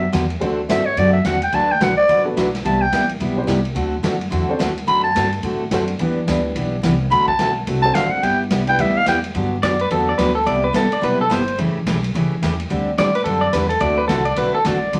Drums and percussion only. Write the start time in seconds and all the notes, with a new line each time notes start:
0.13 kick, snare, hi-hat pedal, ride
0.30 ride
0.41 kick, ride
0.69 kick, snare, hi-hat pedal, ride
0.97 kick, ride
1.24 kick, snare, hi-hat pedal, ride
1.42 ride
1.52 kick, ride
1.81 kick, snare, hi-hat pedal, ride
2.09 kick, ride
2.37 kick, snare, hi-hat pedal, ride
2.55 snare, ride
2.65 kick, ride
2.92 kick, snare, hi-hat pedal, ride
3.09 ride
3.20 kick, ride
3.48 kick, snare, hi-hat pedal, ride
3.65 ride
3.76 kick, ride
4.04 kick, snare, hi-hat pedal, ride
4.21 ride
4.32 kick, ride
4.60 kick, snare, hi-hat pedal, ride
4.77 ride
4.87 kick, ride
5.15 kick, snare, hi-hat pedal, ride
5.32 ride
5.43 kick, ride
5.71 kick, snare, hi-hat pedal, ride
5.88 ride
5.99 kick, ride
6.27 kick, snare, hi-hat pedal, ride
6.55 kick, ride
6.83 kick, snare, hi-hat pedal, ride
7.11 kick, ride
7.28 kick
7.39 kick, snare, hi-hat pedal, ride
7.67 kick, ride
7.95 kick, snare, hi-hat pedal, ride
8.23 kick, ride
8.50 kick, snare, hi-hat pedal, ride
8.67 ride
8.78 kick, ride
9.06 kick, snare, hi-hat pedal, ride
9.24 ride
9.35 kick, ride
9.63 kick, snare, hi-hat pedal, ride
9.79 ride
9.90 kick, ride
10.18 kick, snare, hi-hat pedal, ride
10.46 kick, ride
10.74 kick, snare, hi-hat pedal, ride
10.92 ride
11.03 kick, ride
11.31 kick, snare, hi-hat pedal, ride
11.48 ride
11.58 kick, ride
11.86 kick, snare, hi-hat pedal, ride
12.04 ride
12.15 kick, ride
12.42 kick, snare, hi-hat pedal, ride
12.60 ride
12.70 kick, ride
12.98 kick, snare, hi-hat pedal, ride
13.15 ride
13.25 kick, ride
13.53 kick, snare, hi-hat pedal, ride
13.70 ride
13.80 kick, ride
14.09 kick, snare, hi-hat pedal, ride
14.25 ride
14.36 kick, ride
14.65 kick, snare, hi-hat pedal, ride
14.93 kick, ride